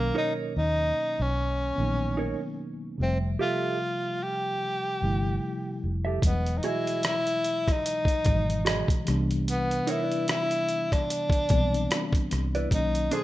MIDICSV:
0, 0, Header, 1, 6, 480
1, 0, Start_track
1, 0, Tempo, 810811
1, 1765, Time_signature, 4, 2, 24, 8
1, 7836, End_track
2, 0, Start_track
2, 0, Title_t, "Clean electric guitar"
2, 0, Program_c, 0, 27
2, 87, Note_on_c, 0, 63, 63
2, 92, Note_on_c, 0, 70, 79
2, 95, Note_on_c, 0, 73, 81
2, 309, Note_off_c, 0, 63, 0
2, 312, Note_off_c, 0, 70, 0
2, 313, Note_off_c, 0, 73, 0
2, 1285, Note_on_c, 0, 63, 62
2, 1292, Note_on_c, 0, 70, 58
2, 1296, Note_on_c, 0, 73, 72
2, 1418, Note_off_c, 0, 63, 0
2, 1421, Note_off_c, 0, 70, 0
2, 1423, Note_off_c, 0, 73, 0
2, 2009, Note_on_c, 0, 67, 63
2, 2014, Note_on_c, 0, 69, 71
2, 2017, Note_on_c, 0, 76, 69
2, 2230, Note_off_c, 0, 67, 0
2, 2233, Note_off_c, 0, 69, 0
2, 2234, Note_off_c, 0, 76, 0
2, 3579, Note_on_c, 0, 76, 52
2, 3586, Note_on_c, 0, 69, 40
2, 3590, Note_on_c, 0, 67, 43
2, 3662, Note_off_c, 0, 76, 0
2, 3665, Note_off_c, 0, 69, 0
2, 3667, Note_off_c, 0, 67, 0
2, 3930, Note_on_c, 0, 66, 66
2, 3934, Note_on_c, 0, 68, 75
2, 3939, Note_on_c, 0, 75, 66
2, 4151, Note_off_c, 0, 66, 0
2, 4153, Note_off_c, 0, 68, 0
2, 4155, Note_off_c, 0, 75, 0
2, 5121, Note_on_c, 0, 66, 56
2, 5126, Note_on_c, 0, 68, 68
2, 5131, Note_on_c, 0, 75, 73
2, 5255, Note_off_c, 0, 66, 0
2, 5258, Note_off_c, 0, 68, 0
2, 5261, Note_off_c, 0, 75, 0
2, 5843, Note_on_c, 0, 63, 70
2, 5850, Note_on_c, 0, 70, 73
2, 5852, Note_on_c, 0, 73, 72
2, 5937, Note_off_c, 0, 63, 0
2, 5937, Note_on_c, 0, 64, 70
2, 5939, Note_off_c, 0, 70, 0
2, 5939, Note_on_c, 0, 71, 73
2, 5941, Note_off_c, 0, 73, 0
2, 5941, Note_on_c, 0, 74, 72
2, 6067, Note_off_c, 0, 64, 0
2, 6071, Note_off_c, 0, 71, 0
2, 6072, Note_off_c, 0, 74, 0
2, 7429, Note_on_c, 0, 74, 59
2, 7430, Note_on_c, 0, 71, 55
2, 7439, Note_on_c, 0, 64, 43
2, 7506, Note_off_c, 0, 74, 0
2, 7507, Note_off_c, 0, 71, 0
2, 7511, Note_off_c, 0, 64, 0
2, 7764, Note_on_c, 0, 62, 72
2, 7771, Note_on_c, 0, 69, 75
2, 7774, Note_on_c, 0, 72, 85
2, 7836, Note_off_c, 0, 62, 0
2, 7836, Note_off_c, 0, 69, 0
2, 7836, Note_off_c, 0, 72, 0
2, 7836, End_track
3, 0, Start_track
3, 0, Title_t, "Tenor saxophone"
3, 0, Program_c, 1, 66
3, 0, Note_on_c, 1, 58, 95
3, 78, Note_off_c, 1, 58, 0
3, 104, Note_on_c, 1, 63, 88
3, 198, Note_off_c, 1, 63, 0
3, 344, Note_on_c, 1, 63, 97
3, 721, Note_on_c, 1, 61, 90
3, 729, Note_off_c, 1, 63, 0
3, 1536, Note_off_c, 1, 61, 0
3, 1790, Note_on_c, 1, 60, 84
3, 1885, Note_off_c, 1, 60, 0
3, 2020, Note_on_c, 1, 65, 88
3, 2504, Note_on_c, 1, 67, 98
3, 2513, Note_off_c, 1, 65, 0
3, 3455, Note_off_c, 1, 67, 0
3, 3704, Note_on_c, 1, 59, 76
3, 3894, Note_on_c, 1, 63, 65
3, 3903, Note_off_c, 1, 59, 0
3, 3944, Note_on_c, 1, 64, 99
3, 3953, Note_off_c, 1, 63, 0
3, 4175, Note_off_c, 1, 64, 0
3, 4184, Note_on_c, 1, 64, 99
3, 4569, Note_on_c, 1, 63, 96
3, 4578, Note_off_c, 1, 64, 0
3, 5381, Note_off_c, 1, 63, 0
3, 5624, Note_on_c, 1, 59, 90
3, 5866, Note_on_c, 1, 64, 93
3, 5875, Note_off_c, 1, 59, 0
3, 6094, Note_off_c, 1, 64, 0
3, 6098, Note_on_c, 1, 64, 99
3, 6469, Note_on_c, 1, 62, 96
3, 6478, Note_off_c, 1, 64, 0
3, 7291, Note_off_c, 1, 62, 0
3, 7540, Note_on_c, 1, 63, 94
3, 7778, Note_on_c, 1, 68, 89
3, 7787, Note_off_c, 1, 63, 0
3, 7836, Note_off_c, 1, 68, 0
3, 7836, End_track
4, 0, Start_track
4, 0, Title_t, "Tine electric piano"
4, 0, Program_c, 2, 4
4, 0, Control_c, 2, 64, 127
4, 0, Note_on_c, 2, 47, 66
4, 0, Note_on_c, 2, 51, 54
4, 0, Note_on_c, 2, 54, 61
4, 0, Note_on_c, 2, 58, 64
4, 0, Note_on_c, 2, 61, 74
4, 747, Note_off_c, 2, 47, 0
4, 749, Note_off_c, 2, 51, 0
4, 753, Note_off_c, 2, 54, 0
4, 757, Note_off_c, 2, 58, 0
4, 760, Note_off_c, 2, 61, 0
4, 1042, Note_on_c, 2, 59, 62
4, 1049, Note_on_c, 2, 51, 59
4, 1055, Note_on_c, 2, 54, 60
4, 1063, Note_on_c, 2, 58, 66
4, 1070, Note_on_c, 2, 63, 68
4, 1722, Note_off_c, 2, 59, 0
4, 1725, Note_off_c, 2, 51, 0
4, 1728, Note_off_c, 2, 54, 0
4, 1732, Note_off_c, 2, 58, 0
4, 1736, Note_off_c, 2, 63, 0
4, 1763, Note_on_c, 2, 48, 65
4, 1772, Note_on_c, 2, 53, 56
4, 1774, Control_c, 2, 64, 0
4, 1778, Note_on_c, 2, 55, 59
4, 1784, Note_on_c, 2, 57, 59
4, 1792, Note_on_c, 2, 76, 67
4, 1871, Control_c, 2, 64, 127
4, 2668, Note_off_c, 2, 48, 0
4, 2673, Note_off_c, 2, 53, 0
4, 2676, Note_off_c, 2, 55, 0
4, 2679, Note_off_c, 2, 57, 0
4, 2683, Note_off_c, 2, 76, 0
4, 2962, Note_on_c, 2, 48, 62
4, 2969, Note_on_c, 2, 53, 55
4, 2975, Note_on_c, 2, 55, 57
4, 2982, Note_on_c, 2, 57, 57
4, 2990, Note_on_c, 2, 64, 68
4, 3642, Note_off_c, 2, 48, 0
4, 3645, Note_off_c, 2, 53, 0
4, 3648, Note_off_c, 2, 55, 0
4, 3652, Note_off_c, 2, 57, 0
4, 3656, Note_off_c, 2, 64, 0
4, 3682, Note_on_c, 2, 47, 66
4, 3688, Note_on_c, 2, 52, 54
4, 3693, Control_c, 2, 64, 0
4, 3696, Note_on_c, 2, 54, 61
4, 3703, Note_on_c, 2, 55, 49
4, 3710, Note_on_c, 2, 75, 62
4, 3737, Note_off_c, 2, 55, 0
4, 3741, Note_on_c, 2, 56, 52
4, 3778, Control_c, 2, 64, 127
4, 4588, Note_off_c, 2, 47, 0
4, 4591, Note_off_c, 2, 52, 0
4, 4595, Note_off_c, 2, 54, 0
4, 4602, Note_off_c, 2, 75, 0
4, 4618, Note_off_c, 2, 56, 0
4, 4878, Note_on_c, 2, 47, 63
4, 4883, Note_on_c, 2, 52, 58
4, 4892, Note_on_c, 2, 54, 56
4, 4898, Note_on_c, 2, 56, 59
4, 4906, Note_on_c, 2, 63, 71
4, 5357, Note_off_c, 2, 52, 0
4, 5358, Note_on_c, 2, 48, 76
4, 5362, Note_off_c, 2, 47, 0
4, 5364, Note_on_c, 2, 52, 63
4, 5369, Note_off_c, 2, 54, 0
4, 5372, Note_off_c, 2, 56, 0
4, 5372, Note_on_c, 2, 55, 65
4, 5374, Control_c, 2, 64, 0
4, 5375, Note_off_c, 2, 63, 0
4, 5378, Note_on_c, 2, 59, 64
4, 5386, Note_on_c, 2, 62, 82
4, 5469, Control_c, 2, 64, 127
4, 6266, Note_off_c, 2, 48, 0
4, 6269, Note_off_c, 2, 52, 0
4, 6273, Note_off_c, 2, 55, 0
4, 6276, Note_off_c, 2, 59, 0
4, 6280, Note_off_c, 2, 62, 0
4, 6802, Note_on_c, 2, 60, 66
4, 6808, Note_on_c, 2, 52, 58
4, 6818, Note_on_c, 2, 55, 58
4, 6822, Note_on_c, 2, 59, 59
4, 6830, Note_on_c, 2, 62, 74
4, 7482, Note_off_c, 2, 60, 0
4, 7485, Note_off_c, 2, 52, 0
4, 7490, Note_off_c, 2, 55, 0
4, 7492, Note_off_c, 2, 59, 0
4, 7496, Note_off_c, 2, 62, 0
4, 7517, Note_on_c, 2, 47, 67
4, 7523, Note_on_c, 2, 51, 58
4, 7532, Note_on_c, 2, 54, 62
4, 7534, Control_c, 2, 64, 0
4, 7537, Note_on_c, 2, 58, 66
4, 7547, Note_on_c, 2, 61, 70
4, 7623, Control_c, 2, 64, 127
4, 7836, Note_off_c, 2, 47, 0
4, 7836, Note_off_c, 2, 51, 0
4, 7836, Note_off_c, 2, 54, 0
4, 7836, Note_off_c, 2, 58, 0
4, 7836, Note_off_c, 2, 61, 0
4, 7836, End_track
5, 0, Start_track
5, 0, Title_t, "Fingered electric bass"
5, 0, Program_c, 3, 33
5, 0, Note_on_c, 3, 35, 82
5, 61, Note_off_c, 3, 35, 0
5, 334, Note_on_c, 3, 39, 79
5, 542, Note_off_c, 3, 39, 0
5, 708, Note_on_c, 3, 35, 95
5, 1009, Note_off_c, 3, 35, 0
5, 1054, Note_on_c, 3, 34, 77
5, 1379, Note_off_c, 3, 34, 0
5, 1775, Note_on_c, 3, 29, 100
5, 1982, Note_off_c, 3, 29, 0
5, 2973, Note_on_c, 3, 31, 78
5, 3181, Note_off_c, 3, 31, 0
5, 3454, Note_on_c, 3, 29, 81
5, 3662, Note_off_c, 3, 29, 0
5, 3689, Note_on_c, 3, 28, 85
5, 3899, Note_off_c, 3, 28, 0
5, 4894, Note_on_c, 3, 32, 76
5, 5219, Note_off_c, 3, 32, 0
5, 5376, Note_on_c, 3, 36, 78
5, 5793, Note_off_c, 3, 36, 0
5, 6814, Note_on_c, 3, 35, 80
5, 7021, Note_off_c, 3, 35, 0
5, 7295, Note_on_c, 3, 36, 81
5, 7502, Note_off_c, 3, 36, 0
5, 7529, Note_on_c, 3, 35, 89
5, 7739, Note_off_c, 3, 35, 0
5, 7836, End_track
6, 0, Start_track
6, 0, Title_t, "Drums"
6, 3684, Note_on_c, 9, 36, 86
6, 3689, Note_on_c, 9, 42, 68
6, 3744, Note_off_c, 9, 36, 0
6, 3748, Note_off_c, 9, 42, 0
6, 3827, Note_on_c, 9, 42, 42
6, 3886, Note_off_c, 9, 42, 0
6, 3924, Note_on_c, 9, 42, 51
6, 3983, Note_off_c, 9, 42, 0
6, 4069, Note_on_c, 9, 42, 46
6, 4128, Note_off_c, 9, 42, 0
6, 4163, Note_on_c, 9, 42, 68
6, 4172, Note_on_c, 9, 37, 82
6, 4222, Note_off_c, 9, 42, 0
6, 4231, Note_off_c, 9, 37, 0
6, 4302, Note_on_c, 9, 42, 50
6, 4362, Note_off_c, 9, 42, 0
6, 4407, Note_on_c, 9, 42, 53
6, 4466, Note_off_c, 9, 42, 0
6, 4544, Note_on_c, 9, 36, 71
6, 4548, Note_on_c, 9, 37, 30
6, 4548, Note_on_c, 9, 42, 39
6, 4604, Note_off_c, 9, 36, 0
6, 4607, Note_off_c, 9, 37, 0
6, 4608, Note_off_c, 9, 42, 0
6, 4652, Note_on_c, 9, 42, 83
6, 4711, Note_off_c, 9, 42, 0
6, 4766, Note_on_c, 9, 36, 85
6, 4784, Note_on_c, 9, 42, 43
6, 4825, Note_off_c, 9, 36, 0
6, 4843, Note_off_c, 9, 42, 0
6, 4882, Note_on_c, 9, 42, 51
6, 4889, Note_on_c, 9, 36, 90
6, 4941, Note_off_c, 9, 42, 0
6, 4948, Note_off_c, 9, 36, 0
6, 5031, Note_on_c, 9, 42, 47
6, 5090, Note_off_c, 9, 42, 0
6, 5127, Note_on_c, 9, 42, 60
6, 5133, Note_on_c, 9, 37, 101
6, 5187, Note_off_c, 9, 42, 0
6, 5193, Note_off_c, 9, 37, 0
6, 5259, Note_on_c, 9, 36, 85
6, 5270, Note_on_c, 9, 42, 45
6, 5318, Note_off_c, 9, 36, 0
6, 5329, Note_off_c, 9, 42, 0
6, 5368, Note_on_c, 9, 42, 61
6, 5377, Note_on_c, 9, 37, 29
6, 5427, Note_off_c, 9, 42, 0
6, 5436, Note_off_c, 9, 37, 0
6, 5510, Note_on_c, 9, 42, 41
6, 5569, Note_off_c, 9, 42, 0
6, 5613, Note_on_c, 9, 42, 68
6, 5672, Note_off_c, 9, 42, 0
6, 5750, Note_on_c, 9, 42, 44
6, 5809, Note_off_c, 9, 42, 0
6, 5846, Note_on_c, 9, 42, 61
6, 5905, Note_off_c, 9, 42, 0
6, 5988, Note_on_c, 9, 42, 37
6, 6048, Note_off_c, 9, 42, 0
6, 6085, Note_on_c, 9, 42, 75
6, 6094, Note_on_c, 9, 37, 85
6, 6144, Note_off_c, 9, 42, 0
6, 6153, Note_off_c, 9, 37, 0
6, 6221, Note_on_c, 9, 42, 46
6, 6280, Note_off_c, 9, 42, 0
6, 6326, Note_on_c, 9, 42, 49
6, 6385, Note_off_c, 9, 42, 0
6, 6465, Note_on_c, 9, 36, 72
6, 6469, Note_on_c, 9, 37, 32
6, 6469, Note_on_c, 9, 42, 42
6, 6525, Note_off_c, 9, 36, 0
6, 6528, Note_off_c, 9, 37, 0
6, 6529, Note_off_c, 9, 42, 0
6, 6573, Note_on_c, 9, 42, 80
6, 6633, Note_off_c, 9, 42, 0
6, 6687, Note_on_c, 9, 36, 88
6, 6704, Note_on_c, 9, 42, 39
6, 6746, Note_off_c, 9, 36, 0
6, 6763, Note_off_c, 9, 42, 0
6, 6802, Note_on_c, 9, 42, 51
6, 6809, Note_on_c, 9, 36, 96
6, 6861, Note_off_c, 9, 42, 0
6, 6868, Note_off_c, 9, 36, 0
6, 6952, Note_on_c, 9, 42, 44
6, 7012, Note_off_c, 9, 42, 0
6, 7049, Note_on_c, 9, 42, 64
6, 7055, Note_on_c, 9, 37, 89
6, 7108, Note_off_c, 9, 42, 0
6, 7114, Note_off_c, 9, 37, 0
6, 7178, Note_on_c, 9, 36, 92
6, 7191, Note_on_c, 9, 42, 41
6, 7238, Note_off_c, 9, 36, 0
6, 7250, Note_off_c, 9, 42, 0
6, 7289, Note_on_c, 9, 42, 56
6, 7297, Note_on_c, 9, 37, 30
6, 7348, Note_off_c, 9, 42, 0
6, 7357, Note_off_c, 9, 37, 0
6, 7429, Note_on_c, 9, 42, 39
6, 7488, Note_off_c, 9, 42, 0
6, 7525, Note_on_c, 9, 36, 81
6, 7530, Note_on_c, 9, 42, 70
6, 7584, Note_off_c, 9, 36, 0
6, 7589, Note_off_c, 9, 42, 0
6, 7666, Note_on_c, 9, 42, 46
6, 7725, Note_off_c, 9, 42, 0
6, 7764, Note_on_c, 9, 42, 65
6, 7823, Note_off_c, 9, 42, 0
6, 7836, End_track
0, 0, End_of_file